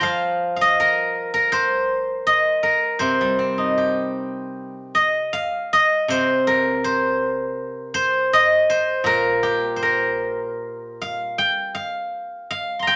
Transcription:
0.00 2.26 F3 soft
0.00 0.29 D#5 medium
0.00 0.56 F5 medium
0.00 1.53 G5 soft
0.00 1.35 A#5 soft
0.00 1.22 C6 soft
0.56 2.23 F5 soft
0.61 2.26 D#5 medium
0.80 1.33 A#4 medium
1.34 2.63 A#4 medium
1.52 2.99 C5 medium
2.27 4.05 D#5 medium
2.63 4.75 A#4 medium
2.99 5.31 C3 soft
2.99 4.97 C5 medium
3.21 4.73 G3 soft
3.39 4.92 C4 soft
3.58 5.12 D#4 soft
3.78 5.32 G4 soft
4.95 5.73 D#5 medium
5.33 6.99 F5 medium
5.73 7.52 D#5 medium
6.08 8.30 C3 medium
6.08 6.84 C5 medium
6.47 8.60 A#4 medium
6.84 7.94 C5 medium
7.94 8.69 C5 medium
8.33 10.12 D#5 medium
8.70 9.76 C5 medium
9.04 11.35 A#2 medium
9.04 9.82 A#4 medium
9.43 11.78 G4 medium
9.76 11.74 C5 soft
9.83 11.95 A#4 medium
11.02 11.74 F5 medium
11.38 12.87 G5 medium
11.75 12.50 F5 medium
12.51 12.96 F5 medium
12.79 12.96 A#5 soft
12.79 12.96 C6 soft
12.87 12.96 G5 medium

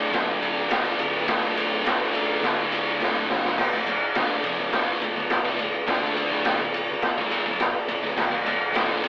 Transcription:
0.00 0.11 D2 medium
0.00 0.11 A2 loud
0.00 0.11 D3 loud
0.00 3.24 F4 medium
0.00 3.25 A4 medium
0.00 3.26 D5 medium
0.00 tambourine soft
0.12 0.68 D2 loud
0.12 0.69 A2 loud
0.12 0.69 D3 loud
0.12 kick loud
0.12 snare loud
0.12 ride loud
0.27 tambourine soft
0.42 ride medium
0.69 0.97 D2 medium
0.69 0.98 A2 medium
0.69 0.98 D3 loud
0.69 snare loud
0.69 ride loud
0.69 tambourine medium
0.84 tambourine medium
0.98 1.24 D2 medium
0.98 1.25 A2 medium
0.98 1.26 D3 medium
0.98 ride medium
1.25 1.83 D2 loud
1.25 1.84 A2 loud
1.25 1.84 D3 loud
1.25 kick loud
1.25 snare loud
1.25 ride loud
1.57 ride medium
1.57 tambourine medium
1.84 2.11 D2 medium
1.84 2.12 A2 medium
1.84 2.12 D3 loud
1.84 snare loud
1.84 ride loud
1.84 tambourine medium
2.12 2.42 D2 medium
2.12 2.42 A2 medium
2.12 2.43 D3 loud
2.12 ride medium
2.12 tambourine medium
2.43 2.98 D2 medium
2.43 2.98 A2 loud
2.43 2.99 D3 loud
2.43 kick loud
2.43 snare loud
2.43 ride loud
2.72 ride medium
2.72 tambourine medium
3.00 3.27 D2 loud
3.00 3.27 A2 loud
3.00 3.28 D3 loud
3.00 snare medium
3.00 tambourine medium
3.15 tambourine medium
3.29 3.56 G2 loud
3.29 3.56 D3 loud
3.29 3.56 G3 loud
3.29 snare medium
3.44 snare loud
3.44 tambourine soft
3.57 3.71 D2 medium
3.57 3.71 A2 medium
3.57 8.13 F4 medium
3.57 8.13 A4 medium
3.57 8.14 D5 medium
3.57 kick loud
3.57 snare loud
3.57 crash loud
3.72 3.85 D2 medium
3.72 3.86 A2 medium
3.86 4.10 D2 medium
3.86 4.10 A2 medium
3.86 ride medium
4.15 4.43 D2 medium
4.15 4.43 A2 loud
4.15 4.44 D3 loud
4.15 snare loud
4.15 ride medium
4.43 4.57 F2 medium
4.43 4.57 C3 loud
4.43 ride medium
4.60 4.71 D2 medium
4.60 4.72 A2 medium
4.73 5.00 D2 medium
4.73 5.01 A2 loud
4.73 5.01 D3 loud
4.73 kick loud
4.73 snare loud
4.73 ride medium
5.01 5.15 D2 medium
5.01 5.16 A2 medium
5.01 ride medium
5.16 5.39 D2 medium
5.16 5.39 A2 medium
5.30 snare loud
5.30 ride loud
5.44 5.58 F2 loud
5.44 5.58 C3 loud
5.58 5.72 D2 medium
5.58 5.73 A2 medium
5.58 ride medium
5.73 muted distorted electric guitar stroke medium
5.87 6.29 D3 medium
5.87 6.30 A3 medium
5.87 6.30 D4 medium
5.87 kick loud
5.87 snare loud
5.87 ride loud
6.17 ride medium
6.31 6.59 D2 medium
6.31 6.59 A2 loud
6.31 6.59 D3 loud
6.45 snare loud
6.45 ride loud
6.60 6.83 D2 medium
6.60 6.83 A2 medium
6.74 ride medium
6.89 muted distorted electric guitar stroke medium
7.02 kick loud
7.02 snare loud
7.02 ride loud
7.17 7.45 G#2 medium
7.17 7.45 D#3 medium
7.17 7.46 G#3 loud
7.31 ride medium
7.46 7.69 D2 medium
7.46 7.69 A2 medium
7.59 snare loud
7.59 ride loud
7.88 8.01 D2 medium
7.88 8.02 A2 medium
7.88 ride medium
8.02 8.15 D2 medium
8.02 8.16 A2 medium
8.15 8.29 D2 medium
8.15 8.30 A2 medium
8.15 9.08 F4 medium
8.15 9.08 A4 medium
8.15 9.08 D5 medium
8.15 kick loud
8.15 snare loud
8.15 crash loud
8.15 tambourine medium
8.30 8.44 D2 medium
8.30 8.45 A2 medium
8.46 8.69 D2 medium
8.46 8.69 A2 medium
8.46 ride medium
8.73 9.02 D2 medium
8.73 9.03 A2 medium
8.73 9.03 D3 medium
8.73 snare loud
8.73 ride medium
8.73 tambourine loud
9.03 9.08 F2 loud
9.03 9.08 C3 loud
9.03 ride medium
9.03 tambourine medium

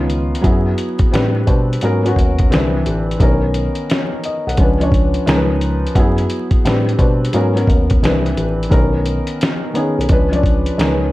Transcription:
0.00 0.33 C#2 loud
0.00 0.34 D#3 medium
0.00 0.35 B3 medium
0.00 0.36 C#4 medium
0.00 0.36 F4 loud
0.10 closed hi-hat medium
0.35 closed hi-hat soft
0.41 0.73 F#2 loud
0.41 1.12 F#3 medium
0.41 1.12 B3 medium
0.41 1.13 E4 medium
0.41 1.13 G#4 medium
0.41 kick loud
0.41 closed hi-hat medium
0.78 closed hi-hat medium
0.99 kick medium
0.99 closed hi-hat soft
1.11 1.42 A2 loud
1.11 1.42 G3 medium
1.11 1.42 C4 medium
1.11 1.43 D4 medium
1.11 1.44 B4 loud
1.11 closed hi-hat medium
1.15 snare loud
1.46 1.76 B2 medium
1.46 1.81 G3 medium
1.46 1.82 D4 medium
1.46 1.83 B4 medium
1.46 1.82 C5 medium
1.46 kick medium
1.46 closed hi-hat medium
1.73 closed hi-hat soft
1.81 2.11 G#2 medium
1.81 2.00 F#3 medium
1.81 2.01 B3 medium
1.81 2.01 C#4 medium
1.81 2.02 A#4 loud
1.81 closed hi-hat medium
2.03 2.50 F#3 medium
2.03 2.51 B3 medium
2.03 2.51 C#4 medium
2.03 2.52 F#4 medium
2.03 closed hi-hat soft
2.16 2.45 D#2 medium
2.16 kick medium
2.16 closed hi-hat medium
2.39 kick medium
2.39 closed hi-hat soft
2.50 2.80 C2 medium
2.50 2.59 D3 medium
2.50 3.11 C4 medium
2.50 3.11 D4 medium
2.50 3.12 B4 medium
2.50 snare loud
2.50 closed hi-hat medium
2.56 3.13 E3 medium
2.86 3.15 A1 medium
2.86 closed hi-hat medium
3.11 closed hi-hat soft
3.19 3.68 B1 loud
3.19 4.08 D#3 medium
3.19 4.08 B3 medium
3.19 4.09 C#4 medium
3.19 4.09 A#4 medium
3.19 kick loud
3.19 closed hi-hat medium
3.54 closed hi-hat medium
3.75 closed hi-hat soft
3.90 4.23 C#5 medium
3.90 snare loud
3.90 closed hi-hat medium
4.24 4.46 D#5 medium
4.24 closed hi-hat medium
4.47 4.56 B1 medium
4.47 4.79 F#5 medium
4.47 closed hi-hat soft
4.57 5.15 C#2 loud
4.57 4.77 F3 medium
4.57 4.77 C#4 medium
4.57 4.78 D4 medium
4.57 kick medium
4.57 closed hi-hat medium
4.62 4.78 B4 medium
4.80 5.25 F3 medium
4.80 5.26 C#4 medium
4.80 5.28 D4 medium
4.80 5.28 C#5 medium
4.80 closed hi-hat soft
4.92 kick medium
4.92 closed hi-hat medium
5.14 closed hi-hat soft
5.26 5.84 C#2 loud
5.26 5.86 F3 medium
5.26 5.87 C#4 medium
5.26 5.87 D#4 medium
5.26 5.37 A#4 medium
5.26 snare loud
5.26 closed hi-hat medium
5.36 5.91 B4 loud
5.61 closed hi-hat medium
5.87 closed hi-hat soft
5.95 6.24 F#2 loud
5.95 6.65 F#3 medium
5.95 6.65 B3 medium
5.95 6.66 E4 medium
5.95 kick loud
5.95 closed hi-hat medium
6.00 6.67 G#4 medium
6.18 closed hi-hat soft
6.30 closed hi-hat medium
6.51 kick medium
6.51 closed hi-hat soft
6.65 6.93 A2 medium
6.65 6.95 G3 medium
6.65 6.95 C4 medium
6.65 6.96 D4 medium
6.65 6.97 B4 medium
6.65 snare medium
6.65 closed hi-hat medium
6.89 closed hi-hat soft
6.97 7.28 B2 medium
6.97 7.33 G3 medium
6.97 7.34 D4 medium
6.97 7.34 B4 medium
6.97 7.33 C5 medium
6.97 kick medium
6.97 closed hi-hat medium
7.25 closed hi-hat soft
7.33 7.63 G#2 medium
7.33 7.52 F#3 medium
7.33 7.52 B3 medium
7.33 7.53 C#4 medium
7.33 7.53 A#4 medium
7.33 closed hi-hat medium
7.54 8.02 F#3 medium
7.54 8.02 B3 medium
7.54 8.03 C#4 medium
7.54 8.03 A#4 medium
7.54 closed hi-hat soft
7.67 7.96 D#2 medium
7.67 kick medium
7.67 closed hi-hat medium
7.90 kick medium
7.90 closed hi-hat soft
8.02 8.32 C2 loud
8.02 8.11 D#3 medium
8.02 8.63 C4 medium
8.02 8.63 D4 medium
8.02 8.64 B4 loud
8.02 snare loud
8.02 closed hi-hat medium
8.09 8.66 E3 medium
8.26 closed hi-hat soft
8.37 8.66 A1 medium
8.37 closed hi-hat medium
8.63 closed hi-hat soft
8.69 9.19 B1 loud
8.69 9.59 D#3 medium
8.69 9.59 B3 medium
8.69 9.60 C#4 medium
8.69 9.60 A#4 loud
8.69 kick loud
8.69 closed hi-hat medium
9.06 closed hi-hat medium
9.27 closed hi-hat soft
9.41 snare loud
9.41 closed hi-hat medium
9.73 10.09 D#3 medium
9.73 10.09 B3 medium
9.73 10.09 C#4 medium
9.73 10.10 G#4 medium
9.73 closed hi-hat medium
9.98 10.08 B1 medium
9.98 closed hi-hat soft
10.09 10.67 C#2 medium
10.09 10.28 F3 medium
10.09 10.28 C#4 medium
10.09 10.29 D4 medium
10.09 kick medium
10.09 closed hi-hat medium
10.13 10.29 B4 medium
10.32 10.76 F3 medium
10.32 10.77 C#4 medium
10.32 10.79 D4 medium
10.32 10.80 D5 medium
10.32 closed hi-hat soft
10.43 kick medium
10.43 closed hi-hat medium
10.66 closed hi-hat soft
10.77 11.12 C#2 loud
10.77 11.12 F3 medium
10.77 11.12 C#4 medium
10.77 11.12 D#4 medium
10.77 10.88 A#4 medium
10.77 snare loud
10.77 closed hi-hat medium
10.87 11.12 B4 medium

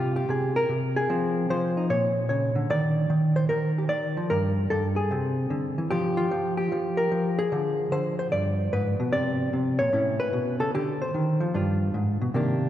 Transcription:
0.00 0.27 C3 medium
0.00 0.29 F4 medium
0.00 0.15 G4 medium
0.16 0.55 G4 medium
0.29 0.68 C3 medium
0.29 0.56 G#4 medium
0.56 1.09 A#4 medium
0.69 1.07 C3 medium
0.96 1.76 G#4 medium
1.10 1.49 F3 medium
1.10 1.88 C4 soft
1.50 1.90 F3 medium
1.50 1.90 C5 medium
1.77 1.88 D#4 soft
1.90 2.68 A#2 medium
1.90 2.28 C#5 medium
2.29 2.55 C#3 medium
2.29 2.69 C#5 medium
2.55 2.69 D3 medium
2.70 3.09 D#3 medium
2.70 3.77 D5 medium
3.10 3.49 D#3 medium
3.36 3.44 C5 medium
3.49 3.88 D#3 medium
3.49 4.29 A#4 medium
3.78 3.89 G4 soft
3.89 4.16 D#3 soft
3.89 4.29 D5 medium
4.17 4.30 F3 medium
4.30 4.70 G2 medium
4.30 4.70 A#4 medium
4.70 5.11 G2 medium
4.70 4.86 A4 medium
4.96 5.90 G#4 medium
5.11 5.50 C3 medium
5.11 5.91 C4 soft
5.50 5.77 D3 medium
5.78 5.91 E3 soft
5.91 6.31 F3 medium
5.91 6.56 G4 medium
6.17 6.97 F4 medium
6.31 6.72 F3 medium
6.57 7.38 G4 medium
6.72 7.11 F3 medium
6.97 7.51 A#4 medium
7.12 7.52 F3 medium
7.39 8.32 G#4 medium
7.52 7.91 D3 medium
7.52 9.93 F3 soft
7.92 8.30 D3 medium
7.92 8.18 C5 medium
8.19 8.27 C5 medium
8.32 8.72 G2 medium
8.32 9.11 D5 medium
8.73 8.99 G#2 medium
8.73 9.12 B4 medium
9.00 9.13 B2 medium
9.12 9.52 C3 medium
9.12 9.78 D5 medium
9.53 9.79 C3 medium
9.79 9.92 A#2 medium
9.79 10.19 C#5 medium
9.93 10.33 A2 medium
9.93 10.72 C#4 soft
9.93 10.72 E4 soft
10.20 10.60 B4 medium
10.33 10.59 B2 medium
10.60 10.73 C#3 medium
10.60 10.73 A4 medium
10.74 11.14 D3 medium
10.74 10.90 G4 medium
11.02 11.54 C5 medium
11.14 11.40 D#3 medium
11.40 11.54 F3 medium
11.54 11.94 G2 medium
11.54 12.33 D4 soft
11.54 12.33 F4 soft
11.94 12.21 G#2 medium
12.21 12.34 B2 medium
12.34 12.69 C3 medium
12.34 12.69 D#3 soft
12.34 12.69 A#3 medium
12.34 12.69 D4 medium
12.34 12.69 G4 soft

